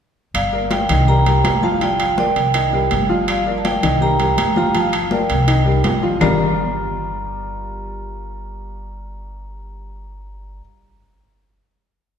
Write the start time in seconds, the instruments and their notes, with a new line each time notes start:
0.34 upright bass G1, vibraphone D5 F5, high conga, high timbale, claves
0.53 upright piano A#3 A#4 D5, high conga
0.71 vibraphone D5 G5, high conga, high timbale
0.89 upright bass C2, upright piano D#3 D#4 D#5, high conga, low conga, high timbale, claves
1.08 upright piano G3 G4 A#4, vibraphone G5 A#5, high conga
1.26 upright piano G3 G4 A#4, high conga, high timbale
1.44 upright bass G1, high conga, high timbale, low timbale, claves
1.63 upright piano F3 F4 F5, vibraphone F5 A5, high conga
1.81 upright piano F3 F4 F5, vibraphone D5 G5, high conga, high timbale
1.99 high conga, high timbale, claves
2.18 upright piano A#3 A#4 D5, vibraphone D5 G5, high conga
2.36 upright bass C2, high timbale
2.54 upright piano D#3 D#4 D#5, high conga, high timbale, claves
2.73 upright piano G3 G4 A#4, high conga
2.91 upright bass G1, high conga, high timbale
3.09 upright piano F3 F4 F5
3.28 vibraphone D5 F5, high conga, high timbale, claves
3.46 upright piano A#3 A#4 D5, high conga
3.58 vibraphone A5
3.65 vibraphone D5 G5, high conga, high timbale
3.83 upright bass C2, upright piano D#3 D#4 D#5, high conga, low conga, high timbale, claves
4.01 upright piano G3 G4 A#4, vibraphone G5 A#5, high conga
4.20 upright piano G3 G4 A#4, high conga, high timbale
4.37 upright bass G1, high conga, high timbale, claves
4.56 upright piano F3 F4 F5, vibraphone G5 A#5, high conga
4.75 upright piano F3 F4 F5, vibraphone F5 A5, high conga, high timbale
4.93 high conga, high timbale, claves
5.11 upright piano A#3 A#4 D5, vibraphone D5 G5, high conga
5.30 upright bass C2, high timbale
5.47 upright piano D#3 D#4 D#5, high conga, high timbale, claves
5.65 upright piano G3 G4 A#4, high conga
5.84 upright bass G1, high conga, high timbale, low timbale
6.03 upright piano F3 F4 F5
6.20 upright bass G1, upright piano G3 D4 F4 G4 A#4 D5, vibraphone A#5, low conga, low timbale, claves